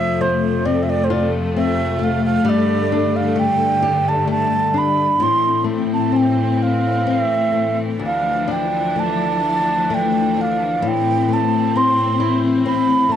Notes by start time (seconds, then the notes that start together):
Already playing: F2 C3 F3 A3 E5
0.21 A3 C5
0.65 C4 D5
0.83 E5
0.90 D5
1.04 C5
1.10 F4 D5
1.57 C4 E5
1.99 A3
2.04 F5
2.26 F5
2.45 G2 D3 G3
2.49 D5
2.92 D4
3.16 F5
3.36 A3 G5
3.82 G4
4.09 A5
4.27 A3 A5
4.74 D4
4.78 B5
5.20 A2 E3 C4 C6
5.64 A3
5.94 A5
6.12 C4
6.16 G5
6.63 F5
7.07 C4 E5
7.52 A3
7.99 D2 F3 D4
8.06 F5
8.48 D4 G5
8.96 A3 A5
9.90 A3
9.94 G5
10.37 D4
10.41 F5
10.82 A2 C4
10.88 G5
11.29 A3
11.33 A5
11.76 C4 C6
12.20 E4
12.66 C4 B5
13.09 A3 A5